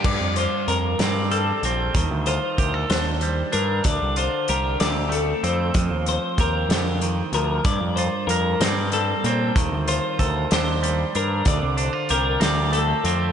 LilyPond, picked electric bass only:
\new Staff \with { instrumentName = "Picked electric bass" } { \clef bass \time 6/8 \key g \minor \tempo 4. = 63 g,16 f,8 r16 f,8 g,4 bes,,8 | ees,16 d,8 r16 d,8 ees,4 g,8 | d,16 c,8 r16 c,8 d,4 f,8 | f,16 ees,8 r16 ees,8 f,4 d,8 |
g,16 f,8 r16 f,8 g,4 bes,8 | ees,16 d,8 r16 d,8 ees,4 g,8 | d,16 c,8 r16 c,8 d,4 f,8 | }